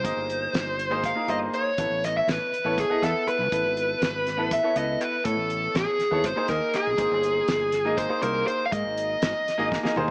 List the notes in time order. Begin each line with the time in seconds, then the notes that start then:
Already playing: C5
0.03 G#1 A#3 D#4 G#4 D#5, kick, closed hi-hat
0.17 G1
0.30 closed hi-hat
0.53 G1, snare, closed hi-hat
0.79 closed hi-hat
0.90 G#1 A#3 D#4 G#4 C5
1.04 F5, kick, closed hi-hat
1.15 A#3 D#4 G#4 A#4
1.28 G1 A#3 D#4 G#4 C5 D#5, closed hi-hat
1.54 C#5, closed hi-hat
1.78 A1 B3 E4 A4 C#5, kick, closed hi-hat
1.90 A1
2.04 D#5, snare, closed hi-hat
2.17 E5
2.27 A1 B4, snare, closed hi-hat
2.53 muted fingered electric bass stroke, closed hi-hat
2.64 A1 B3 E4 A4 C#5
2.78 G#4, kick, closed hi-hat
2.89 B3 E4 A4 D#5, muted fingered electric bass stroke
3.02 E2 B3 E4 A4 E5, kick, snare, closed hi-hat
3.27 B4, muted fingered electric bass stroke, closed hi-hat
3.39 C#2
3.52 A1 B3 E4 A4 B4, kick, closed hi-hat
3.64 G#1
3.77 closed hi-hat
4.01 G#1, snare, closed hi-hat
4.27 snare, closed hi-hat
4.37 A1 B3 E4 A4 B4
4.51 E5, kick, closed hi-hat
4.63 B3 E4 A4 C#5
4.75 C#2 B3 E4 A4 B4 D#5, closed hi-hat
5.01 B4, closed hi-hat
5.25 A2 B3 E4 A4 C#5, kick, closed hi-hat
5.37 A1
5.50 closed hi-hat
5.74 A1 G#4, snare, closed hi-hat
5.99 muted fingered electric bass stroke, snare, closed hi-hat
6.11 D#2 B3 E4 A4 C#5
6.24 G#1 C5, kick, closed hi-hat
6.36 A#3 D#4 G#4 C5
6.48 D#2 A#3 D#4 G#4 A#4 D#5, kick, snare, closed hi-hat
6.74 G#4, muted fingered electric bass stroke, snare, closed hi-hat
6.87 C2
6.97 G#1 A#3 D#4 G#4 C5, kick, closed hi-hat
7.11 G1
7.23 closed hi-hat
7.48 G1, snare, closed hi-hat
7.72 snare, closed hi-hat
7.85 G#1 A#3 D#4 G#4 D#5
7.97 C5, kick, closed hi-hat
8.09 A#3 D#4 G#4 C5
8.21 C2 A#3 D#4 G#4 A#4 C5, closed hi-hat
8.47 C5, closed hi-hat
8.66 F5
8.71 G#2 A#3 D#4 G#4 A#4 D#5, kick, closed hi-hat
8.85 G#1
8.98 closed hi-hat
9.22 G#1, snare, closed hi-hat
9.48 muted fingered electric bass stroke, snare, closed hi-hat
9.58 G#1 A#3 D#4 G#4 D#5
9.72 kick, snare
9.83 A#3 D#4 G#4 D#5, muted fingered electric bass stroke, snare
9.96 D#2 A#3 D#4 G#4 C5, high tom